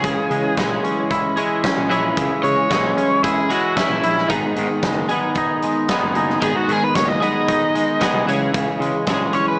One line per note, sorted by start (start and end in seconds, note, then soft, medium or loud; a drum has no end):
0.00 0.14 C#2 medium
0.00 0.57 E3 medium
0.00 0.31 G#3 medium
0.00 0.57 G#3 medium
0.00 0.59 C#4 medium
0.00 0.55 G#4 loud
0.00 0.59 G#4 loud
0.00 kick loud
0.04 1.38 C#3 medium
0.04 closed hi-hat medium
0.30 0.41 C#3 medium
0.30 0.57 G#3 medium
0.30 closed hi-hat medium
0.57 0.78 A#1 loud
0.57 1.36 E3 medium
0.57 1.37 G#3 medium
0.57 1.38 G#3 medium
0.57 1.36 C#4 medium
0.57 1.36 G#4 medium
0.57 kick loud
0.57 snare loud
0.57 closed hi-hat medium
0.84 1.62 C#4 medium
0.84 closed hi-hat medium
1.11 1.89 E4 medium
1.11 kick medium
1.11 closed hi-hat medium
1.36 1.88 E3 medium
1.36 2.44 G#3 medium
1.36 1.90 G#3 medium
1.36 1.89 C#4 medium
1.36 1.91 G#4 medium
1.36 closed hi-hat medium
1.63 2.96 C#4 medium
1.63 kick medium
1.63 snare loud
1.63 closed hi-hat medium
1.78 1.88 A#1 medium
1.89 2.12 A#1 medium
1.89 2.68 E3 medium
1.89 2.70 G#3 medium
1.89 2.69 C#4 medium
1.89 3.22 E4 medium
1.89 2.72 G#4 medium
1.89 closed hi-hat medium
2.17 2.27 C#2 medium
2.17 3.50 C#3 medium
2.17 kick loud
2.17 closed hi-hat loud
2.44 2.54 C#3 medium
2.44 2.70 G#3 medium
2.44 3.21 C#5 medium
2.44 closed hi-hat medium
2.70 2.92 A#1 loud
2.70 3.48 E3 medium
2.70 3.50 G#3 medium
2.70 3.51 G#3 medium
2.70 3.49 C#4 medium
2.70 3.49 G#4 medium
2.70 kick loud
2.70 snare loud
2.70 closed hi-hat medium
2.97 3.75 C#4 medium
2.97 closed hi-hat medium
3.23 4.03 E4 medium
3.23 3.50 G#4 medium
3.23 kick loud
3.23 closed hi-hat medium
3.49 4.02 E3 medium
3.49 4.84 G#3 medium
3.49 4.29 G#3 medium
3.49 4.02 C#4 medium
3.49 3.77 F#4 medium
3.49 4.31 G#4 medium
3.49 closed hi-hat medium
3.76 4.30 C#4 medium
3.76 4.29 E4 medium
3.76 kick loud
3.76 snare loud
3.76 closed hi-hat medium
3.90 4.00 A#1 medium
4.03 4.24 A#1 medium
4.03 4.30 E4 medium
4.03 closed hi-hat medium
4.18 snare soft
4.28 4.40 G#1 medium
4.28 5.63 G#2 medium
4.28 5.07 D#3 medium
4.28 5.10 B3 medium
4.28 5.09 D#4 medium
4.28 5.08 G#4 medium
4.28 kick loud
4.28 closed hi-hat medium
4.56 4.66 G#2 medium
4.56 5.90 D#3 medium
4.56 closed hi-hat medium
4.82 5.03 F#1 loud
4.82 5.63 G#3 medium
4.82 kick loud
4.82 snare loud
4.82 closed hi-hat medium
5.09 5.88 D#3 medium
5.09 5.88 B3 medium
5.09 5.89 B3 medium
5.09 5.88 D#4 medium
5.09 5.91 G#4 medium
5.09 closed hi-hat medium
5.35 6.15 D#4 medium
5.35 kick loud
5.35 closed hi-hat medium
5.62 6.96 G#3 medium
5.62 closed hi-hat medium
5.88 6.39 D#3 medium
5.88 6.41 B3 medium
5.88 7.21 B3 medium
5.88 6.41 D#4 medium
5.88 6.43 G#4 medium
5.88 kick loud
5.88 snare loud
5.88 closed hi-hat medium
6.02 6.12 F#1 medium
6.15 6.36 F#1 medium
6.15 7.47 D#4 medium
6.15 closed hi-hat medium
6.30 snare soft
6.40 6.52 G#1 medium
6.40 7.75 G#2 medium
6.40 7.19 D#3 medium
6.40 7.20 B3 medium
6.40 7.20 D#4 medium
6.40 6.56 G#4 medium
6.40 7.20 G#4 medium
6.40 kick loud
6.40 closed hi-hat medium
6.56 6.71 F#4 medium
6.68 6.78 G#2 medium
6.68 8.02 D#3 medium
6.68 6.83 G#4 medium
6.68 closed hi-hat medium
6.84 6.96 B4 medium
6.95 7.16 F#1 loud
6.95 7.74 G#3 medium
6.95 7.08 C#5 medium
6.95 kick loud
6.95 snare loud
6.95 closed hi-hat medium
7.08 7.21 D#5 medium
7.20 7.98 D#3 medium
7.20 8.00 B3 medium
7.20 8.01 B3 medium
7.20 7.99 D#4 loud
7.20 7.99 G#4 loud
7.20 8.25 D#5 medium
7.20 closed hi-hat medium
7.48 8.28 D#4 medium
7.48 kick medium
7.48 closed hi-hat medium
7.75 8.28 G#3 medium
7.75 closed hi-hat medium
8.00 8.25 D#3 medium
8.00 8.26 B3 medium
8.00 8.28 B3 medium
8.00 8.26 D#4 medium
8.00 8.27 G#4 medium
8.00 kick medium
8.00 snare loud
8.00 closed hi-hat medium
8.14 8.24 C2 medium
8.27 8.48 C#2 medium
8.27 8.52 C#3 medium
8.27 9.05 E3 medium
8.27 9.05 G#3 medium
8.27 9.06 C#4 medium
8.27 9.06 G#4 loud
8.27 closed hi-hat medium
8.54 8.64 C#2 medium
8.54 9.59 C#3 medium
8.54 kick loud
8.54 closed hi-hat loud
8.79 8.90 C#3 medium
8.79 9.06 G#3 medium
8.79 closed hi-hat medium
9.07 9.28 A#1 loud
9.07 9.59 E3 medium
9.07 9.59 G#3 medium
9.07 9.59 C#4 medium
9.07 9.59 G#4 medium
9.07 kick loud
9.07 snare loud
9.07 closed hi-hat loud
9.33 9.59 C#4 medium
9.33 9.47 C#5 medium
9.33 closed hi-hat medium
9.48 9.59 B4 medium